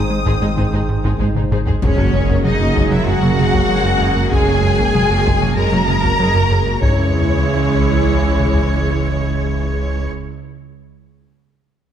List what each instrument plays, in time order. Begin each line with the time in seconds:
Already playing: sub bass G#1, trombone section D#3 C4, analog synth pad G#3 D#4 G#4 C5, french horn section D#4, violin section D#6
0.10 analog synth bass G#3
0.25 double bass section G#1, cello section G#2, analog synth bass G#2, viola section G#3 D#4, violin section G#4 C5, taiko
0.41 cello section G#2, analog synth bass G#3, viola section G#3 D#4, violin section G#4 C5, taiko low-mid
0.57 double bass section G#1, cello section G#2, analog synth bass G#2, viola section G#3 D#4, violin section G#4 C5, taiko
0.73 cello section G#2, analog synth bass G#2, viola section G#3 D#4, violin section G#4 C5
0.89 analog synth bass G#2
1.04 cello section G#2, analog synth bass G#2, viola section G#3 D#4, violin section G#4 C5, taiko
1.19 double bass section G#1, cello section G#2, viola section G#3 D#4, analog synth bass G#3, violin section G#4 C5, taiko low-mid
1.35 cello section G#2, analog synth bass G#2, viola section G#3 D#4, violin section D#4 G#4, taiko mid
1.51 double bass section G#1, cello section G#2, analog synth bass G#2, viola section G#3 D#4, violin section G#4 C5, taiko low-mid
1.66 cello section G#2, analog synth bass G#2, viola section G#3 D#4, violin section G#4 C5, taiko low
1.81 sub bass F#1, double bass section F#1, analog synth bass F#2, trombone section C#3 F#3, viola section G#3 G#4, analog synth pad G#3 C#4 G#4 A#4, french horn section A#3 G#4, cello section C#4, violin section C#5, taiko, impact
1.98 analog synth bass F#2, viola section A#3 F#4, taiko rim
2.13 analog synth bass F#2, viola section G#3 G#4
2.29 analog synth bass F#2, viola section A#3 F#4, taiko
2.44 double bass section F#1, analog synth bass F#3, viola section G#3 G#4, cello section D#4, violin section D#5, taiko mid
2.59 analog synth bass F#2, viola section A#3 F#4
2.76 analog synth bass F#2, viola section G#3 G#4, taiko
2.91 analog synth bass F#3, viola section A#3 F#4, cello section E4, violin section E5, taiko mid
3.07 double bass section F#1, analog synth bass F#2, viola section G#3 G#4, cello section F#4, violin section F#5
3.22 analog synth bass F#3, viola section A#3 F#4, taiko mid
3.39 analog synth bass F#2, viola section G#3 G#4, taiko mid
3.54 analog synth bass F#2, viola section A#3 F#4, taiko
3.69 double bass section F#1, analog synth bass F#3, viola section G#3 G#4
3.84 analog synth bass F#2, viola section A#3 F#4, taiko rim
4.00 analog synth bass F#2, viola section G#3 G#4
4.15 analog synth bass F#2, viola section A#3 F#4, taiko rim
4.31 double bass section F#1, analog synth bass F#2, viola section G#3 G#4, cello section G#4, violin section G#5, taiko
4.46 analog synth bass F#2, viola section A#3 F#4
4.61 analog synth bass F#2, viola section G#3 G#4
4.76 analog synth bass F#2, viola section A#3 F#4, taiko
4.92 double bass section F#1, analog synth bass F#3, viola section G#3 G#4, taiko mid
5.08 analog synth bass F#2, viola section A#3 F#4
5.24 analog synth bass F#2, viola section G#3 G#4, taiko
5.40 analog synth bass F#3, viola section A#3 F#4, taiko mid
5.55 double bass section F#1, analog synth bass F#2, viola section G#3 G#4, cello section A#4, violin section A#5
5.71 analog synth bass F#3, viola section A#3 F#4, taiko mid
5.88 analog synth bass F#2, viola section G#3 G#4, taiko mid
6.03 analog synth bass F#2, viola section A#3 F#4, taiko
6.18 double bass section F#1, analog synth bass F#3, viola section G#3 G#4
6.34 analog synth bass F#2, viola section A#3 F#4
6.50 analog synth bass F#2, viola section G#3 G#4
6.65 analog synth bass F#2, viola section A#3 F#4
6.81 double bass section C#2, sub bass C#2, trombone section C#3 E3, viola section G#3 E4, analog synth pad G#3 C#4 E4 G#4, french horn section G#3 G#4, cello section C#5, violin section C#5, taiko, sub drop
8.39 taiko mid
8.54 taiko low